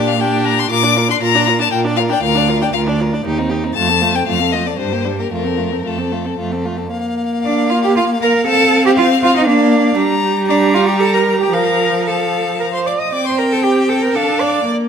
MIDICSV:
0, 0, Header, 1, 5, 480
1, 0, Start_track
1, 0, Key_signature, -2, "major"
1, 0, Tempo, 508475
1, 676, Time_signature, 3, 2, 24, 8
1, 4030, Tempo, 528634
1, 6910, Tempo, 508906
1, 10270, Tempo, 530973
1, 12190, Tempo, 513699
1, 13833, End_track
2, 0, Start_track
2, 0, Title_t, "Violin"
2, 0, Program_c, 0, 40
2, 69, Note_on_c, 0, 77, 84
2, 187, Note_on_c, 0, 79, 72
2, 201, Note_off_c, 0, 77, 0
2, 422, Note_on_c, 0, 82, 86
2, 436, Note_off_c, 0, 79, 0
2, 556, Note_on_c, 0, 84, 87
2, 570, Note_off_c, 0, 82, 0
2, 660, Note_off_c, 0, 84, 0
2, 666, Note_on_c, 0, 86, 105
2, 1026, Note_off_c, 0, 86, 0
2, 1044, Note_on_c, 0, 84, 80
2, 1091, Note_off_c, 0, 84, 0
2, 1149, Note_on_c, 0, 82, 99
2, 1503, Note_off_c, 0, 82, 0
2, 1517, Note_on_c, 0, 81, 86
2, 1614, Note_off_c, 0, 81, 0
2, 1620, Note_on_c, 0, 79, 83
2, 1695, Note_off_c, 0, 79, 0
2, 1854, Note_on_c, 0, 77, 85
2, 1905, Note_off_c, 0, 77, 0
2, 1982, Note_on_c, 0, 79, 82
2, 2098, Note_off_c, 0, 79, 0
2, 2104, Note_on_c, 0, 77, 86
2, 2458, Note_off_c, 0, 77, 0
2, 2467, Note_on_c, 0, 79, 71
2, 2515, Note_off_c, 0, 79, 0
2, 2577, Note_on_c, 0, 77, 81
2, 2653, Note_off_c, 0, 77, 0
2, 3531, Note_on_c, 0, 81, 93
2, 3918, Note_on_c, 0, 79, 68
2, 3932, Note_off_c, 0, 81, 0
2, 4026, Note_off_c, 0, 79, 0
2, 4031, Note_on_c, 0, 77, 83
2, 4255, Note_on_c, 0, 75, 72
2, 4269, Note_off_c, 0, 77, 0
2, 4391, Note_on_c, 0, 74, 64
2, 4405, Note_off_c, 0, 75, 0
2, 4493, Note_off_c, 0, 74, 0
2, 4499, Note_on_c, 0, 72, 64
2, 4855, Note_off_c, 0, 72, 0
2, 4867, Note_on_c, 0, 70, 53
2, 4982, Note_off_c, 0, 70, 0
2, 4987, Note_on_c, 0, 70, 66
2, 5478, Note_on_c, 0, 69, 53
2, 5492, Note_off_c, 0, 70, 0
2, 5957, Note_off_c, 0, 69, 0
2, 6909, Note_on_c, 0, 74, 71
2, 7137, Note_off_c, 0, 74, 0
2, 7159, Note_on_c, 0, 77, 67
2, 7207, Note_off_c, 0, 77, 0
2, 7284, Note_on_c, 0, 79, 65
2, 7331, Note_off_c, 0, 79, 0
2, 7408, Note_on_c, 0, 77, 68
2, 7483, Note_off_c, 0, 77, 0
2, 7647, Note_on_c, 0, 82, 78
2, 7722, Note_off_c, 0, 82, 0
2, 7886, Note_on_c, 0, 81, 90
2, 8235, Note_off_c, 0, 81, 0
2, 8257, Note_on_c, 0, 79, 78
2, 8301, Note_off_c, 0, 79, 0
2, 8368, Note_on_c, 0, 77, 93
2, 8595, Note_off_c, 0, 77, 0
2, 8601, Note_on_c, 0, 77, 88
2, 8714, Note_off_c, 0, 77, 0
2, 8727, Note_on_c, 0, 75, 73
2, 8771, Note_off_c, 0, 75, 0
2, 8842, Note_on_c, 0, 74, 77
2, 9302, Note_off_c, 0, 74, 0
2, 9796, Note_on_c, 0, 74, 79
2, 9872, Note_off_c, 0, 74, 0
2, 10036, Note_on_c, 0, 77, 76
2, 10082, Note_off_c, 0, 77, 0
2, 10154, Note_on_c, 0, 79, 56
2, 10202, Note_off_c, 0, 79, 0
2, 10286, Note_on_c, 0, 81, 72
2, 10383, Note_off_c, 0, 81, 0
2, 10388, Note_on_c, 0, 82, 71
2, 10460, Note_off_c, 0, 82, 0
2, 10636, Note_on_c, 0, 79, 64
2, 10746, Note_off_c, 0, 79, 0
2, 10751, Note_on_c, 0, 82, 72
2, 11225, Note_off_c, 0, 82, 0
2, 11246, Note_on_c, 0, 81, 59
2, 11725, Note_on_c, 0, 82, 65
2, 11739, Note_off_c, 0, 81, 0
2, 11839, Note_off_c, 0, 82, 0
2, 11844, Note_on_c, 0, 84, 61
2, 11890, Note_off_c, 0, 84, 0
2, 11954, Note_on_c, 0, 86, 64
2, 12001, Note_off_c, 0, 86, 0
2, 12082, Note_on_c, 0, 87, 63
2, 12186, Note_off_c, 0, 87, 0
2, 12192, Note_on_c, 0, 86, 73
2, 12316, Note_on_c, 0, 84, 70
2, 12330, Note_off_c, 0, 86, 0
2, 12420, Note_off_c, 0, 84, 0
2, 12426, Note_on_c, 0, 82, 59
2, 12474, Note_off_c, 0, 82, 0
2, 12550, Note_on_c, 0, 81, 61
2, 12654, Note_off_c, 0, 81, 0
2, 12659, Note_on_c, 0, 79, 76
2, 12734, Note_off_c, 0, 79, 0
2, 12897, Note_on_c, 0, 81, 63
2, 13013, Note_on_c, 0, 82, 62
2, 13027, Note_off_c, 0, 81, 0
2, 13130, Note_off_c, 0, 82, 0
2, 13135, Note_on_c, 0, 81, 71
2, 13372, Note_on_c, 0, 86, 67
2, 13386, Note_off_c, 0, 81, 0
2, 13620, Note_off_c, 0, 86, 0
2, 13833, End_track
3, 0, Start_track
3, 0, Title_t, "Violin"
3, 0, Program_c, 1, 40
3, 0, Note_on_c, 1, 67, 62
3, 178, Note_off_c, 1, 67, 0
3, 195, Note_on_c, 1, 67, 60
3, 667, Note_off_c, 1, 67, 0
3, 673, Note_on_c, 1, 70, 57
3, 786, Note_on_c, 1, 74, 51
3, 800, Note_off_c, 1, 70, 0
3, 921, Note_on_c, 1, 70, 53
3, 935, Note_off_c, 1, 74, 0
3, 1029, Note_on_c, 1, 74, 59
3, 1043, Note_off_c, 1, 70, 0
3, 1153, Note_off_c, 1, 74, 0
3, 1173, Note_on_c, 1, 70, 54
3, 1283, Note_on_c, 1, 74, 55
3, 1297, Note_off_c, 1, 70, 0
3, 1408, Note_on_c, 1, 70, 56
3, 1422, Note_off_c, 1, 74, 0
3, 1528, Note_on_c, 1, 74, 47
3, 1542, Note_off_c, 1, 70, 0
3, 1631, Note_off_c, 1, 74, 0
3, 1636, Note_on_c, 1, 70, 50
3, 1765, Note_on_c, 1, 74, 50
3, 1779, Note_off_c, 1, 70, 0
3, 1884, Note_on_c, 1, 70, 56
3, 1898, Note_off_c, 1, 74, 0
3, 2009, Note_on_c, 1, 74, 54
3, 2023, Note_off_c, 1, 70, 0
3, 2118, Note_off_c, 1, 74, 0
3, 2126, Note_on_c, 1, 70, 62
3, 2242, Note_on_c, 1, 74, 53
3, 2256, Note_off_c, 1, 70, 0
3, 2359, Note_on_c, 1, 70, 54
3, 2373, Note_off_c, 1, 74, 0
3, 2491, Note_on_c, 1, 74, 53
3, 2505, Note_off_c, 1, 70, 0
3, 2600, Note_off_c, 1, 74, 0
3, 2605, Note_on_c, 1, 70, 50
3, 2722, Note_on_c, 1, 74, 55
3, 2736, Note_off_c, 1, 70, 0
3, 2848, Note_on_c, 1, 70, 48
3, 2862, Note_off_c, 1, 74, 0
3, 2968, Note_on_c, 1, 74, 46
3, 2983, Note_off_c, 1, 70, 0
3, 3076, Note_off_c, 1, 74, 0
3, 3081, Note_on_c, 1, 67, 51
3, 3197, Note_on_c, 1, 63, 54
3, 3211, Note_off_c, 1, 67, 0
3, 3304, Note_on_c, 1, 67, 49
3, 3318, Note_off_c, 1, 63, 0
3, 3437, Note_on_c, 1, 63, 47
3, 3451, Note_off_c, 1, 67, 0
3, 3552, Note_off_c, 1, 63, 0
3, 3556, Note_on_c, 1, 65, 52
3, 3674, Note_on_c, 1, 69, 45
3, 3688, Note_off_c, 1, 65, 0
3, 3791, Note_on_c, 1, 65, 47
3, 3805, Note_off_c, 1, 69, 0
3, 3915, Note_on_c, 1, 69, 43
3, 3929, Note_off_c, 1, 65, 0
3, 4025, Note_off_c, 1, 69, 0
3, 4031, Note_on_c, 1, 65, 41
3, 4153, Note_on_c, 1, 69, 46
3, 4167, Note_off_c, 1, 65, 0
3, 4270, Note_on_c, 1, 65, 41
3, 4284, Note_off_c, 1, 69, 0
3, 4388, Note_on_c, 1, 69, 42
3, 4401, Note_off_c, 1, 65, 0
3, 4500, Note_off_c, 1, 69, 0
3, 4506, Note_on_c, 1, 62, 36
3, 4625, Note_on_c, 1, 67, 40
3, 4639, Note_off_c, 1, 62, 0
3, 4741, Note_on_c, 1, 62, 37
3, 4754, Note_off_c, 1, 67, 0
3, 4876, Note_on_c, 1, 67, 37
3, 4889, Note_off_c, 1, 62, 0
3, 4987, Note_off_c, 1, 67, 0
3, 4992, Note_on_c, 1, 65, 39
3, 5111, Note_on_c, 1, 69, 35
3, 5125, Note_off_c, 1, 65, 0
3, 5217, Note_on_c, 1, 65, 35
3, 5231, Note_off_c, 1, 69, 0
3, 5345, Note_on_c, 1, 69, 38
3, 5358, Note_off_c, 1, 65, 0
3, 5461, Note_off_c, 1, 69, 0
3, 5467, Note_on_c, 1, 65, 36
3, 5587, Note_on_c, 1, 69, 36
3, 5600, Note_off_c, 1, 65, 0
3, 5713, Note_on_c, 1, 65, 35
3, 5727, Note_off_c, 1, 69, 0
3, 5839, Note_on_c, 1, 69, 33
3, 5852, Note_off_c, 1, 65, 0
3, 5951, Note_off_c, 1, 69, 0
3, 5957, Note_on_c, 1, 65, 36
3, 6074, Note_on_c, 1, 69, 37
3, 6087, Note_off_c, 1, 65, 0
3, 6194, Note_on_c, 1, 65, 36
3, 6208, Note_off_c, 1, 69, 0
3, 6301, Note_on_c, 1, 69, 39
3, 6315, Note_off_c, 1, 65, 0
3, 6428, Note_off_c, 1, 69, 0
3, 6434, Note_on_c, 1, 77, 65
3, 9267, Note_off_c, 1, 77, 0
3, 9296, Note_on_c, 1, 82, 80
3, 9744, Note_off_c, 1, 82, 0
3, 9780, Note_on_c, 1, 82, 67
3, 10747, Note_on_c, 1, 77, 55
3, 10760, Note_off_c, 1, 82, 0
3, 11218, Note_off_c, 1, 77, 0
3, 11224, Note_on_c, 1, 77, 55
3, 11985, Note_off_c, 1, 77, 0
3, 12198, Note_on_c, 1, 79, 63
3, 13158, Note_on_c, 1, 77, 52
3, 13172, Note_off_c, 1, 79, 0
3, 13631, Note_off_c, 1, 77, 0
3, 13637, Note_on_c, 1, 74, 66
3, 13712, Note_off_c, 1, 74, 0
3, 13833, End_track
4, 0, Start_track
4, 0, Title_t, "Cello"
4, 0, Program_c, 2, 42
4, 0, Note_on_c, 2, 46, 69
4, 642, Note_off_c, 2, 46, 0
4, 664, Note_on_c, 2, 46, 74
4, 1095, Note_off_c, 2, 46, 0
4, 1149, Note_on_c, 2, 46, 66
4, 1573, Note_off_c, 2, 46, 0
4, 1622, Note_on_c, 2, 46, 63
4, 2047, Note_off_c, 2, 46, 0
4, 2098, Note_on_c, 2, 38, 72
4, 2526, Note_off_c, 2, 38, 0
4, 2577, Note_on_c, 2, 38, 68
4, 3006, Note_off_c, 2, 38, 0
4, 3065, Note_on_c, 2, 39, 58
4, 3489, Note_off_c, 2, 39, 0
4, 3547, Note_on_c, 2, 41, 67
4, 3972, Note_off_c, 2, 41, 0
4, 4029, Note_on_c, 2, 41, 56
4, 4447, Note_off_c, 2, 41, 0
4, 4501, Note_on_c, 2, 43, 48
4, 4927, Note_off_c, 2, 43, 0
4, 4982, Note_on_c, 2, 41, 47
4, 5410, Note_off_c, 2, 41, 0
4, 5473, Note_on_c, 2, 41, 46
4, 5897, Note_off_c, 2, 41, 0
4, 5951, Note_on_c, 2, 41, 47
4, 6379, Note_off_c, 2, 41, 0
4, 6912, Note_on_c, 2, 62, 72
4, 7151, Note_on_c, 2, 65, 74
4, 7165, Note_off_c, 2, 62, 0
4, 7274, Note_off_c, 2, 65, 0
4, 7290, Note_on_c, 2, 67, 79
4, 7394, Note_off_c, 2, 67, 0
4, 7399, Note_on_c, 2, 65, 81
4, 7475, Note_off_c, 2, 65, 0
4, 7641, Note_on_c, 2, 70, 85
4, 7875, Note_off_c, 2, 70, 0
4, 7879, Note_on_c, 2, 69, 103
4, 8232, Note_off_c, 2, 69, 0
4, 8247, Note_on_c, 2, 67, 89
4, 8293, Note_off_c, 2, 67, 0
4, 8353, Note_on_c, 2, 65, 104
4, 8429, Note_off_c, 2, 65, 0
4, 8597, Note_on_c, 2, 65, 96
4, 8711, Note_off_c, 2, 65, 0
4, 8725, Note_on_c, 2, 63, 91
4, 8820, Note_off_c, 2, 63, 0
4, 8826, Note_on_c, 2, 62, 89
4, 9294, Note_off_c, 2, 62, 0
4, 9774, Note_on_c, 2, 62, 92
4, 10021, Note_on_c, 2, 65, 86
4, 10036, Note_off_c, 2, 62, 0
4, 10156, Note_on_c, 2, 67, 76
4, 10170, Note_off_c, 2, 65, 0
4, 10267, Note_on_c, 2, 69, 79
4, 10281, Note_off_c, 2, 67, 0
4, 10388, Note_on_c, 2, 70, 79
4, 10402, Note_off_c, 2, 69, 0
4, 10627, Note_off_c, 2, 70, 0
4, 10637, Note_on_c, 2, 67, 71
4, 10749, Note_on_c, 2, 70, 77
4, 10762, Note_off_c, 2, 67, 0
4, 11233, Note_on_c, 2, 69, 68
4, 11247, Note_off_c, 2, 70, 0
4, 11705, Note_off_c, 2, 69, 0
4, 11710, Note_on_c, 2, 70, 68
4, 11758, Note_off_c, 2, 70, 0
4, 11835, Note_on_c, 2, 72, 61
4, 11947, Note_on_c, 2, 74, 72
4, 11961, Note_off_c, 2, 72, 0
4, 12076, Note_on_c, 2, 75, 73
4, 12089, Note_off_c, 2, 74, 0
4, 12191, Note_on_c, 2, 74, 82
4, 12205, Note_off_c, 2, 75, 0
4, 12309, Note_off_c, 2, 74, 0
4, 12321, Note_on_c, 2, 72, 72
4, 12427, Note_on_c, 2, 70, 78
4, 12441, Note_off_c, 2, 72, 0
4, 12559, Note_on_c, 2, 69, 75
4, 12573, Note_off_c, 2, 70, 0
4, 12670, Note_on_c, 2, 67, 81
4, 12684, Note_off_c, 2, 69, 0
4, 12904, Note_on_c, 2, 69, 73
4, 12918, Note_off_c, 2, 67, 0
4, 13030, Note_on_c, 2, 70, 78
4, 13044, Note_off_c, 2, 69, 0
4, 13144, Note_on_c, 2, 69, 80
4, 13158, Note_off_c, 2, 70, 0
4, 13387, Note_on_c, 2, 74, 74
4, 13401, Note_off_c, 2, 69, 0
4, 13628, Note_off_c, 2, 74, 0
4, 13833, End_track
5, 0, Start_track
5, 0, Title_t, "Viola"
5, 0, Program_c, 3, 41
5, 0, Note_on_c, 3, 62, 61
5, 183, Note_off_c, 3, 62, 0
5, 188, Note_on_c, 3, 62, 68
5, 664, Note_off_c, 3, 62, 0
5, 671, Note_on_c, 3, 65, 58
5, 790, Note_on_c, 3, 62, 53
5, 804, Note_off_c, 3, 65, 0
5, 914, Note_on_c, 3, 65, 58
5, 928, Note_off_c, 3, 62, 0
5, 1030, Note_on_c, 3, 62, 53
5, 1044, Note_off_c, 3, 65, 0
5, 1147, Note_off_c, 3, 62, 0
5, 1153, Note_on_c, 3, 65, 55
5, 1274, Note_on_c, 3, 62, 56
5, 1288, Note_off_c, 3, 65, 0
5, 1391, Note_on_c, 3, 65, 50
5, 1405, Note_off_c, 3, 62, 0
5, 1508, Note_on_c, 3, 62, 55
5, 1522, Note_off_c, 3, 65, 0
5, 1625, Note_off_c, 3, 62, 0
5, 1631, Note_on_c, 3, 65, 57
5, 1745, Note_on_c, 3, 62, 54
5, 1759, Note_off_c, 3, 65, 0
5, 1858, Note_on_c, 3, 65, 53
5, 1872, Note_off_c, 3, 62, 0
5, 1981, Note_on_c, 3, 62, 54
5, 1996, Note_off_c, 3, 65, 0
5, 2098, Note_off_c, 3, 62, 0
5, 2104, Note_on_c, 3, 65, 55
5, 2218, Note_on_c, 3, 62, 53
5, 2232, Note_off_c, 3, 65, 0
5, 2350, Note_on_c, 3, 65, 57
5, 2364, Note_off_c, 3, 62, 0
5, 2473, Note_on_c, 3, 62, 50
5, 2487, Note_off_c, 3, 65, 0
5, 2585, Note_off_c, 3, 62, 0
5, 2591, Note_on_c, 3, 65, 54
5, 2709, Note_on_c, 3, 62, 55
5, 2723, Note_off_c, 3, 65, 0
5, 2834, Note_on_c, 3, 65, 48
5, 2848, Note_off_c, 3, 62, 0
5, 2955, Note_on_c, 3, 62, 49
5, 2969, Note_off_c, 3, 65, 0
5, 3071, Note_off_c, 3, 62, 0
5, 3075, Note_on_c, 3, 63, 50
5, 3204, Note_on_c, 3, 60, 52
5, 3218, Note_off_c, 3, 63, 0
5, 3318, Note_on_c, 3, 63, 47
5, 3332, Note_off_c, 3, 60, 0
5, 3437, Note_on_c, 3, 60, 49
5, 3451, Note_off_c, 3, 63, 0
5, 3549, Note_off_c, 3, 60, 0
5, 3554, Note_on_c, 3, 57, 54
5, 3676, Note_on_c, 3, 60, 47
5, 3690, Note_off_c, 3, 57, 0
5, 3792, Note_on_c, 3, 57, 52
5, 3806, Note_off_c, 3, 60, 0
5, 3909, Note_on_c, 3, 60, 47
5, 3923, Note_off_c, 3, 57, 0
5, 4030, Note_off_c, 3, 60, 0
5, 4037, Note_on_c, 3, 57, 44
5, 4149, Note_on_c, 3, 60, 45
5, 4163, Note_off_c, 3, 57, 0
5, 4270, Note_on_c, 3, 57, 40
5, 4284, Note_off_c, 3, 60, 0
5, 4384, Note_on_c, 3, 60, 39
5, 4398, Note_off_c, 3, 57, 0
5, 4498, Note_off_c, 3, 60, 0
5, 4503, Note_on_c, 3, 55, 41
5, 4625, Note_on_c, 3, 58, 39
5, 4639, Note_off_c, 3, 55, 0
5, 4742, Note_on_c, 3, 55, 38
5, 4756, Note_off_c, 3, 58, 0
5, 4868, Note_on_c, 3, 58, 38
5, 4882, Note_off_c, 3, 55, 0
5, 4979, Note_off_c, 3, 58, 0
5, 4985, Note_on_c, 3, 57, 36
5, 5098, Note_on_c, 3, 60, 37
5, 5111, Note_off_c, 3, 57, 0
5, 5225, Note_on_c, 3, 57, 39
5, 5238, Note_off_c, 3, 60, 0
5, 5352, Note_on_c, 3, 60, 35
5, 5366, Note_off_c, 3, 57, 0
5, 5459, Note_off_c, 3, 60, 0
5, 5464, Note_on_c, 3, 57, 35
5, 5586, Note_on_c, 3, 60, 39
5, 5600, Note_off_c, 3, 57, 0
5, 5709, Note_on_c, 3, 57, 35
5, 5723, Note_off_c, 3, 60, 0
5, 5832, Note_on_c, 3, 60, 34
5, 5846, Note_off_c, 3, 57, 0
5, 5953, Note_off_c, 3, 60, 0
5, 5959, Note_on_c, 3, 57, 37
5, 6083, Note_on_c, 3, 60, 34
5, 6097, Note_off_c, 3, 57, 0
5, 6196, Note_on_c, 3, 57, 37
5, 6210, Note_off_c, 3, 60, 0
5, 6315, Note_on_c, 3, 60, 35
5, 6329, Note_off_c, 3, 57, 0
5, 6424, Note_off_c, 3, 60, 0
5, 6429, Note_on_c, 3, 58, 60
5, 7837, Note_off_c, 3, 58, 0
5, 7874, Note_on_c, 3, 60, 76
5, 8814, Note_on_c, 3, 58, 80
5, 8828, Note_off_c, 3, 60, 0
5, 9285, Note_off_c, 3, 58, 0
5, 9291, Note_on_c, 3, 55, 83
5, 10704, Note_off_c, 3, 55, 0
5, 10736, Note_on_c, 3, 53, 62
5, 11974, Note_off_c, 3, 53, 0
5, 12183, Note_on_c, 3, 60, 60
5, 13149, Note_on_c, 3, 62, 65
5, 13163, Note_off_c, 3, 60, 0
5, 13612, Note_off_c, 3, 62, 0
5, 13617, Note_on_c, 3, 58, 66
5, 13833, Note_off_c, 3, 58, 0
5, 13833, End_track
0, 0, End_of_file